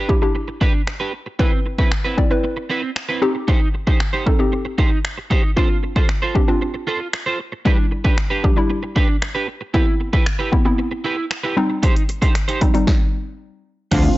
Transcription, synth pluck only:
0.09 D4 E4 G4
0.22 D4 E4 G4
1.39 C4 E4 B4
2.17 C4 E4 D5
2.30 C4 E4 B4
3.22 C4 D#4 G4
4.26 C4 D#4 A4
4.39 C4 D#4 G4
5.57 C4 D4 F4
6.35 C4 D4 G4
6.48 C4 D4 F4
7.65 G3 D4 E4
8.44 G3 D4 G4
8.57 G3 D4 E4
9.74 B3 C4 E4
10.52 B3 C4 E4
10.65 B3 C4 E4
11.57 G3 C4 D#4
12.61 G3 C4 D#4
12.74 G3 C4 D#4
13.91 F3 C4 D4

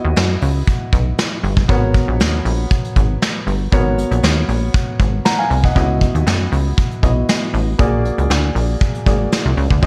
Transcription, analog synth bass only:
0.05 D#2
0.17 F#2
0.42 C#2
0.93 B1
1.43 G1
1.69 G#1
2.08 A#1
2.20 D#2
2.45 A#1
2.96 G#1
3.47 G1
3.72 G#1
4.11 A#1
4.23 D#2
4.49 A#1
5.00 G#1
5.50 C2
5.76 C#2
6.15 D#2
6.27 F#2
6.52 C#2
7.03 B1
7.54 A1
7.79 A#1
8.18 C#2
8.30 D2
8.55 A#1
9.06 G#1
9.45 C2
9.57 C#2
9.70 D2
9.83 D#2

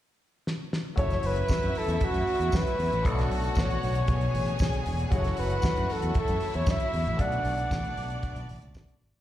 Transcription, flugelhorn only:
0.99 C#5
1.26 B4
1.78 A4
2.04 F#4
2.57 B4
3.07 A4
3.60 C#5
5.14 C#5
5.39 B4
5.92 A4
6.19 A4
6.55 C#5
6.71 E5
7.21 F#5

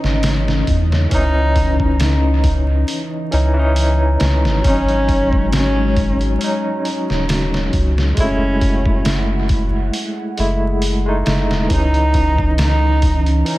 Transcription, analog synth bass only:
0.04 G#1
0.68 E2
1.12 C#2
3.33 C#2
4.21 C#2
4.45 G#1
4.65 G#1
7.10 D#1
7.73 C#2
8.17 F#1
10.39 F#1
11.27 F#1
11.51 E1
11.71 C#2

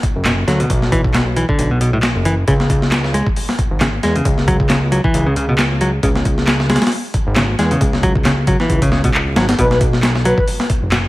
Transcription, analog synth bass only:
0.16 F#1
0.48 D2
0.70 B1
1.59 B1
2.16 F#1
2.48 C#2
3.71 G#1
4.03 E2
4.25 C#2
5.14 C#2
6.03 C#2
7.27 G#1
7.59 E2
7.81 C#2
8.70 C#2
9.36 G#1
9.59 B1
10.82 F#1

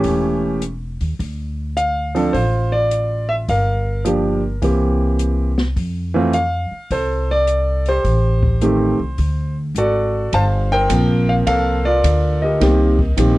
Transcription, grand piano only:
Already playing: E3 A3 C#4 G4
1.77 F5
2.15 F3 C4 D4 A4
2.33 F4 C5
2.72 D5
3.29 E5
3.49 A#4 F5
4.05 F3 A#3 D4 G4
4.62 E3 A#3 C4 G4
6.14 E3 A3 C4 F4
6.34 F5
6.92 A4 C5
7.31 D5
7.89 G4 C5
8.62 D#3 A3 C4 G4
9.78 F#4 A4 D5
10.34 C5 F5 A5
10.72 A#4 C5 G5
10.89 F3 A#3 C4 A#4
11.29 F5
11.47 A4 A#4 F5
11.85 F4 A#4 D5
12.42 G4 A#4 D#5
12.60 D#3 A#3 C4 G4
13.17 D#3 A#3 C4 G4

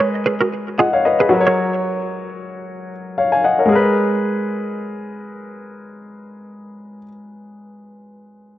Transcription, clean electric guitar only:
0.00 A#4
0.26 G#4 B4
0.41 F#4 A#4
0.79 F4 G#4
1.20 G#4 B4
1.47 A#4 C#5

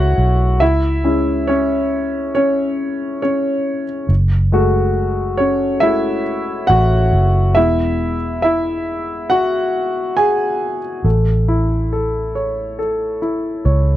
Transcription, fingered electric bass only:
Already playing: C#2
0.18 B1
0.61 C#2
4.09 F#1
6.70 A1
7.13 F#1
7.56 E1
11.04 A1
13.66 C#2

